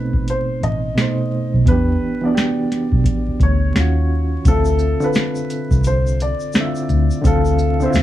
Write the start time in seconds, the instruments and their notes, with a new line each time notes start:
Already playing: fingered electric bass B1, reed electric piano B2 A3 C4 D#4 C5, upright piano B4
0.13 kick
0.28 upright piano C5, closed hi-hat
0.63 fingered electric bass A1, upright piano D#5, closed hi-hat
0.95 reed electric piano B2 A3, snare, closed hi-hat
1.00 reed electric piano D#4 C5
1.54 fingered electric bass B1
1.66 fingered electric bass E2, reed electric piano E3 B3, upright piano B4, kick, closed hi-hat
1.70 reed electric piano D4 G4
2.22 reed electric piano E3 B3, upright piano D5
2.26 reed electric piano D4 F#4
2.35 reed electric piano G4, snare, closed hi-hat
2.72 snare, closed hi-hat
2.92 fingered electric bass B1, kick
3.04 kick, closed hi-hat
3.28 muted fingered electric bass stroke
3.40 fingered electric bass D2, upright piano C#5, kick, closed hi-hat
3.74 fingered electric bass D#2, reed electric piano D#3 C#4, snare, closed hi-hat
3.78 reed electric piano F4 F#4
4.45 fingered electric bass D2, reed electric piano D3 C4, upright piano A4, kick, closed hi-hat, shaker
4.49 reed electric piano F4 E5
4.65 shaker
4.79 shaker
5.00 reed electric piano D3 C4 F4, shaker
5.04 reed electric piano A4, upright piano B4
5.14 snare, closed hi-hat, shaker
5.36 shaker
5.50 closed hi-hat, shaker
5.71 fingered electric bass C2, kick, shaker
5.84 upright piano C5, closed hi-hat, shaker
6.07 shaker
6.20 upright piano D5, closed hi-hat, shaker
6.40 shaker
6.53 reed electric piano D3 C4, snare, closed hi-hat, shaker
6.58 reed electric piano E4 E5
6.64 reed electric piano F4
6.75 shaker
6.89 fingered electric bass D2, shaker
7.11 shaker
7.22 fingered electric bass D2, reed electric piano D3 C4, kick, closed hi-hat, shaker
7.26 reed electric piano F4 F5, upright piano A4
7.45 shaker
7.59 shaker
7.80 reed electric piano D3 C4, upright piano C5, shaker
7.84 reed electric piano E4 E5
7.90 fingered electric bass E2, reed electric piano F4, shaker
7.95 snare, closed hi-hat